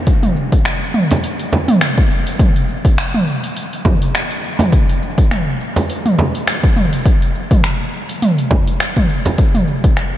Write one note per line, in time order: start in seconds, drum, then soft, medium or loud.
0.07 kick loud
0.07 open hi-hat medium
0.07 shaker soft
0.23 mid tom medium
0.23 open hi-hat soft
0.36 shaker medium
0.52 kick medium
0.52 open hi-hat soft
0.52 shaker soft
0.65 finger snap loud
0.65 open hi-hat medium
0.65 shaker soft
0.94 mid tom medium
0.94 shaker medium
1.11 open hi-hat soft
1.11 frame drum medium
1.11 shaker soft
1.24 open hi-hat medium
1.24 shaker soft
1.39 open hi-hat soft
1.52 frame drum medium
1.52 shaker medium
1.68 mid tom medium
1.68 open hi-hat medium
1.68 shaker soft
1.81 finger snap loud
1.81 open hi-hat medium
1.81 shaker soft
1.98 kick loud
1.98 open hi-hat soft
2.11 shaker medium
2.27 open hi-hat soft
2.27 shaker soft
2.39 kick loud
2.39 mid tom medium
2.39 open hi-hat medium
2.39 shaker soft
2.56 open hi-hat soft
2.69 shaker medium
2.85 kick loud
2.85 open hi-hat soft
2.85 shaker soft
2.98 finger snap loud
2.98 open hi-hat medium
2.98 shaker soft
3.14 mid tom medium
3.27 shaker medium
3.44 open hi-hat soft
3.44 shaker soft
3.57 open hi-hat medium
3.57 shaker soft
3.73 open hi-hat soft
3.85 kick loud
3.85 mid tom medium
3.85 frame drum loud
3.85 shaker medium
4.02 open hi-hat soft
4.02 shaker soft
4.15 finger snap loud
4.15 open hi-hat medium
4.15 shaker soft
4.31 open hi-hat soft
4.44 shaker medium
4.59 mid tom medium
4.59 open hi-hat soft
4.59 frame drum medium
4.59 shaker soft
4.73 kick loud
4.73 open hi-hat medium
4.73 shaker soft
4.89 open hi-hat soft
5.02 shaker medium
5.18 kick loud
5.18 open hi-hat soft
5.18 shaker soft
5.31 finger snap loud
5.31 mid tom medium
5.31 open hi-hat medium
5.31 shaker soft
5.61 shaker medium
5.76 open hi-hat soft
5.76 frame drum loud
5.76 shaker soft
5.90 open hi-hat medium
5.90 shaker soft
6.06 mid tom medium
6.06 open hi-hat soft
6.19 frame drum loud
6.19 shaker medium
6.35 open hi-hat soft
6.35 shaker soft
6.48 finger snap loud
6.48 open hi-hat medium
6.48 shaker soft
6.64 kick loud
6.64 open hi-hat soft
6.76 mid tom medium
6.76 shaker medium
6.93 open hi-hat soft
6.93 shaker soft
7.06 kick loud
7.06 open hi-hat medium
7.06 shaker soft
7.22 open hi-hat soft
7.35 shaker medium
7.51 kick loud
7.51 mid tom medium
7.51 open hi-hat soft
7.51 shaker soft
7.64 finger snap loud
7.64 open hi-hat medium
7.64 shaker soft
7.93 shaker medium
8.09 open hi-hat soft
8.09 shaker soft
8.22 mid tom medium
8.22 open hi-hat medium
8.22 shaker soft
8.38 open hi-hat soft
8.51 kick medium
8.51 frame drum medium
8.51 shaker medium
8.67 open hi-hat soft
8.67 shaker soft
8.80 finger snap loud
8.80 open hi-hat medium
8.80 shaker soft
8.97 kick medium
8.97 mid tom medium
8.97 open hi-hat soft
9.09 shaker medium
9.25 open hi-hat soft
9.25 frame drum medium
9.25 shaker soft
9.38 kick loud
9.38 open hi-hat medium
9.38 shaker soft
9.55 mid tom medium
9.55 open hi-hat soft
9.67 shaker medium
9.84 kick loud
9.84 open hi-hat soft
9.84 shaker soft
9.97 finger snap medium
9.97 open hi-hat medium
9.97 shaker soft